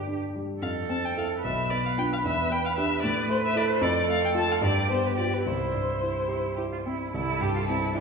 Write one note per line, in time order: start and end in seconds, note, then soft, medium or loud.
0.00 0.58 G2 soft
0.00 0.65 D3 soft
0.00 0.07 D4 soft
0.00 0.18 G4 soft
0.00 0.24 D5 soft
0.07 0.51 D4 soft
0.35 0.63 G3 soft
0.62 1.41 F2 soft
0.62 1.39 A4 soft
0.62 0.70 F5 medium
0.89 1.33 C4 soft
0.89 1.07 A5 medium
1.05 1.18 G5 soft
1.17 1.41 E4 soft
1.17 1.41 A4 soft
1.17 1.26 F5 medium
1.43 2.22 B1 soft
1.43 3.00 B4 soft
1.43 1.72 E5 medium
1.70 2.13 B3 soft
1.70 1.84 D5 medium
1.86 1.91 F5 medium
1.97 2.21 D4 soft
1.97 2.21 F4 soft
1.97 2.03 G5 medium
2.13 2.18 F5 medium
2.25 3.01 E2 soft
2.25 2.54 E5 medium
2.51 2.93 B3 soft
2.51 2.64 G5 medium
2.66 2.70 F5 medium
2.77 3.01 D4 soft
2.77 3.01 G4 soft
2.77 3.02 E5 medium
3.02 3.80 A2 medium
3.02 3.84 B4 medium
3.02 3.29 D5 medium
3.29 3.72 A3 soft
3.29 3.36 C5 medium
3.46 3.58 E5 medium
3.56 3.80 E4 soft
3.56 3.80 A4 soft
3.56 3.70 D5 medium
3.71 3.84 C5 medium
3.81 4.60 F2 medium
3.81 4.64 A4 medium
3.81 4.09 D5 medium
4.08 4.51 A3 soft
4.08 4.23 F5 medium
4.25 4.30 G5 medium
4.35 4.60 F4 soft
4.35 4.60 A4 soft
4.35 4.54 A5 medium
4.52 4.64 F5 medium
4.62 5.42 G2 medium
4.62 5.45 G4 medium
4.62 4.91 D5 medium
4.90 5.34 B3 soft
4.90 5.08 C5 medium
5.07 5.18 B4 soft
5.18 5.43 F4 soft
5.18 5.43 G4 soft
5.18 5.35 D5 medium
5.34 5.49 B4 soft
5.46 7.10 C2 soft
5.46 6.22 E4 soft
5.46 6.87 C5 medium
5.74 6.18 G2 soft
6.03 6.47 E4 soft
6.28 6.56 E4 soft
6.28 6.74 G4 soft
6.56 7.02 E4 soft
6.56 6.62 G4 soft
6.72 6.78 F4 soft
6.85 7.14 C4 soft
6.85 7.13 E4 soft
7.13 8.00 C2 soft
7.13 7.43 E4 medium
7.13 7.98 A4 medium
7.41 7.85 G2 soft
7.41 7.55 G4 medium
7.56 7.61 F4 medium
7.68 8.00 C4 soft
7.68 7.95 E4 medium
7.95 8.00 D4 medium
7.95 8.00 E4 soft
7.95 8.00 G4 soft